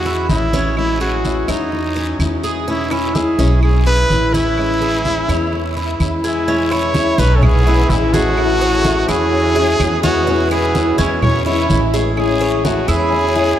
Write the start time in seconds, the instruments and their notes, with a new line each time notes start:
Already playing: upright bass E2, trumpet F#4
0.05 cuban tres E4, high conga
0.28 upright bass A1, nylon-string guitar E3 G#3 C#4 E4, trumpet E4, high conga, short guiro
0.53 cuban tres C#4, high conga, short guiro
0.76 nylon-string guitar E3 G#3 C#4 E4, trumpet E4, high conga, long guiro, claves
1.01 trumpet F#4, cuban tres G#4, high conga
1.24 nylon-string guitar E3 G#3 C#4 E4, high conga, short guiro
1.48 upright bass E2, nylon-string guitar G#3 C#4 E4, trumpet D#4, cuban tres C#5, high conga, short guiro, claves
1.72 muted nylon-string guitar stroke, high conga, long guiro
1.96 cuban tres C#4, high conga
2.19 upright bass E2, nylon-string guitar E3 G#3 C#4 E4, high conga, short guiro, claves
2.43 cuban tres G#4, short guiro
2.67 nylon-string guitar B2 E3 G#3 C#4 E4, cuban tres C#4, trumpet E4, high conga, long guiro
2.91 trumpet C#4, cuban tres E4, high conga, claves
3.15 nylon-string guitar E3 G#3 C#4 E4, trumpet G#4, high conga, short guiro
3.38 upright bass B1, nylon-string guitar E3 G#3 C#4 E4, cuban tres C#4, high conga, short guiro
3.63 trumpet G#4, muted nylon-string guitar stroke, high conga, long guiro, claves
3.86 cuban tres E4, trumpet B4, high conga
4.10 upright bass A1, nylon-string guitar E3 G#3 C#4 E4, high conga, short guiro
4.34 cuban tres C#4, trumpet E4, high conga, short guiro
4.57 nylon-string guitar E3 G#3 C#4 E4, high conga, long guiro, claves
4.81 cuban tres G#4, high conga
5.05 nylon-string guitar E3 G#3 C#4 E4, high conga, short guiro
5.28 upright bass E2, nylon-string guitar G#3 C#4 E4, cuban tres C#5, high conga, short guiro, claves
5.53 muted nylon-string guitar stroke, high conga, long guiro
5.76 cuban tres E4, high conga
6.00 upright bass E2, nylon-string guitar E3 G#3 C#4 E4, high conga, short guiro, claves
6.24 violin section G#3, trumpet E4, cuban tres G#4, short guiro
6.47 nylon-string guitar B2 E3 G#3 C#4 E4, cuban tres C#4, high conga, long guiro
6.71 cuban tres E4, violin section E4, trumpet C#5, high conga, claves
6.94 nylon-string guitar E3 G#3 C#4 E4, high conga, short guiro
7.18 upright bass B1, cuban tres C#4, violin section D#4, trumpet B4, high conga, short guiro
7.36 violin section C#4, trumpet A4
7.42 violin section B3, trumpet G#4, muted nylon-string guitar stroke, high conga, low conga, long guiro, claves
7.66 nylon-string guitar E3 G#3 C#4 E4, cuban tres E4, high conga
7.89 upright bass A1, nylon-string guitar E3 G#3 C#4 E4, violin section G#3, trumpet E4, high conga, short guiro
8.13 nylon-string guitar E3 G#3 C#4 E4, violin section A3, trumpet F#4, cuban tres G#4, high conga, short guiro
8.37 nylon-string guitar E3 C#4 E4, high conga, long guiro, claves
8.61 cuban tres C#5, high conga
8.85 nylon-string guitar E3 G#3 C#4 E4, high conga, short guiro
9.09 upright bass E2, violin section C#4, cuban tres E4, trumpet G#4, high conga, short guiro, claves
9.32 muted nylon-string guitar stroke, high conga, long guiro
9.56 nylon-string guitar G#3 C#4 E4, cuban tres G#4, high conga
9.80 upright bass E2, nylon-string guitar E3 G#3 C#4 E4, high conga, short guiro, claves
10.03 nylon-string guitar G#3 C#4 E4, violin section B3, cuban tres C#4, trumpet F#4, high conga, short guiro
10.27 nylon-string guitar B2 E3 G#3 C#4 E4, cuban tres C#4, high conga, long guiro
10.51 violin section B3, cuban tres E4, trumpet G#4, high conga, claves
10.75 nylon-string guitar E3 G#3 C#4 E4, high conga, short guiro
10.98 upright bass E2, violin section G#3, cuban tres C#4, trumpet E4, high conga, short guiro
11.22 violin section E4, trumpet C#5, muted nylon-string guitar stroke, high conga, low conga, long guiro, claves
11.46 nylon-string guitar E3 G#3 C#4 E4, violin section E4, cuban tres E4, trumpet C#5, high conga
11.69 upright bass A1, nylon-string guitar E3 G#3 C#4 E4, high conga, short guiro
11.93 nylon-string guitar E3 G#3 C#4 E4, cuban tres G#4, short guiro
12.16 nylon-string guitar E3 G#3 C#4 E4, violin section C#4, trumpet G#4, high conga, long guiro, claves
12.41 cuban tres C#5, high conga
12.64 nylon-string guitar E3 G#3 C#4 E4, violin section A3, trumpet F#4, high conga, short guiro
12.88 upright bass E2, violin section C#4, cuban tres E4, trumpet G#4, high conga, short guiro, claves
13.12 muted nylon-string guitar stroke, high conga, long guiro
13.35 nylon-string guitar G#3 C#4 E4, cuban tres G#4, high conga